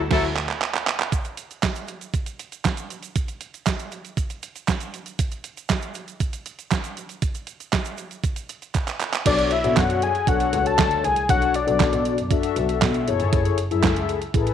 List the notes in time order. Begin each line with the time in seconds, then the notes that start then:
0.10 D2 F#3 E4 F#4 A4, kick, snare, crash
0.36 clap
0.49 clap
0.62 clap
0.74 clap
0.87 clap
1.00 clap
1.12 kick, closed hi-hat, shaker
1.25 closed hi-hat, shaker
1.37 closed hi-hat, shaker
1.51 closed hi-hat, shaker
1.63 kick, snare, clap, closed hi-hat, shaker
1.75 closed hi-hat, shaker
1.88 closed hi-hat, shaker
2.01 closed hi-hat, shaker
2.14 kick, closed hi-hat, shaker
2.26 closed hi-hat, shaker
2.39 closed hi-hat, shaker
2.52 closed hi-hat, shaker
2.65 kick, snare, clap, closed hi-hat, shaker
2.77 closed hi-hat, shaker
2.90 closed hi-hat, shaker
3.03 closed hi-hat, shaker
3.16 kick, closed hi-hat, shaker
3.28 closed hi-hat, shaker
3.41 closed hi-hat, shaker
3.54 closed hi-hat, shaker
3.66 kick, snare, clap, closed hi-hat, shaker
3.79 closed hi-hat, shaker
3.92 closed hi-hat, shaker
4.05 closed hi-hat, shaker
4.17 kick, closed hi-hat, shaker
4.30 closed hi-hat, shaker
4.43 closed hi-hat, shaker
4.56 closed hi-hat, shaker
4.68 kick, snare, clap, closed hi-hat, shaker
4.80 closed hi-hat, shaker
4.94 closed hi-hat, shaker
5.06 closed hi-hat, shaker
5.19 kick, closed hi-hat, shaker
5.31 closed hi-hat, shaker
5.44 closed hi-hat, shaker
5.57 closed hi-hat, shaker
5.69 kick, snare, clap, closed hi-hat, shaker
5.82 closed hi-hat, shaker
5.94 closed hi-hat, shaker
6.08 closed hi-hat, shaker
6.20 kick, closed hi-hat, shaker
6.33 closed hi-hat, shaker
6.46 closed hi-hat, shaker
6.59 closed hi-hat, shaker
6.71 kick, snare, clap, closed hi-hat, shaker
6.84 closed hi-hat, shaker
6.97 closed hi-hat, shaker
7.09 closed hi-hat, shaker
7.22 kick, closed hi-hat, shaker
7.35 closed hi-hat, shaker
7.47 closed hi-hat, shaker
7.60 closed hi-hat, shaker
7.72 kick, snare, clap, closed hi-hat, shaker
7.85 closed hi-hat, shaker
7.98 closed hi-hat, shaker
8.11 closed hi-hat, shaker
8.24 kick, closed hi-hat, shaker
8.36 closed hi-hat, shaker
8.49 closed hi-hat, shaker
8.62 closed hi-hat, shaker
8.74 kick, clap, closed hi-hat, shaker
8.87 clap, closed hi-hat, shaker
9.00 clap, closed hi-hat, shaker
9.13 clap, closed hi-hat, shaker
9.25 B1 D4 F#4 A4 C#5 D5, kick, closed hi-hat, crash
9.38 closed hi-hat
9.51 E5, closed hi-hat
9.63 B2 D4 F#4 A4 C#5, closed hi-hat
9.77 F#2 F#5, kick, snare, clap, closed hi-hat
9.90 closed hi-hat
10.02 G#5, closed hi-hat
10.15 closed hi-hat
10.27 B1 D4 F#4 A4 C#5 F#5, kick, closed hi-hat
10.40 closed hi-hat
10.53 C#2, closed hi-hat
10.66 A5, closed hi-hat
10.78 D2, kick, snare, clap, closed hi-hat
10.91 closed hi-hat
11.04 C2 G#5, closed hi-hat
11.16 closed hi-hat
11.29 B1 D4 F#4 A4 C#5 F#5, kick, closed hi-hat
11.42 closed hi-hat
11.54 D5, closed hi-hat
11.66 B1 D4 F#4 A4 D5, closed hi-hat
11.80 B2, kick, snare, clap, closed hi-hat
11.93 B2, closed hi-hat
12.05 closed hi-hat
12.18 F#2, closed hi-hat
12.30 D4 F#4 A4 E5, kick, closed hi-hat
12.43 closed hi-hat
12.56 B1, closed hi-hat
12.69 closed hi-hat
12.81 B2, kick, snare, clap, closed hi-hat
12.94 closed hi-hat
13.07 F#1 E4 G#4 A4 C#5, closed hi-hat
13.20 G1, closed hi-hat
13.33 F#1, kick, closed hi-hat
13.45 closed hi-hat
13.58 closed hi-hat
13.71 F#2 E4 G#4 A4 E5, closed hi-hat
13.83 C#2, kick, snare, clap, closed hi-hat
13.96 closed hi-hat
14.09 closed hi-hat
14.22 closed hi-hat
14.34 A1 E4 G#4 A4 A#4, kick, closed hi-hat
14.41 B4
14.47 closed hi-hat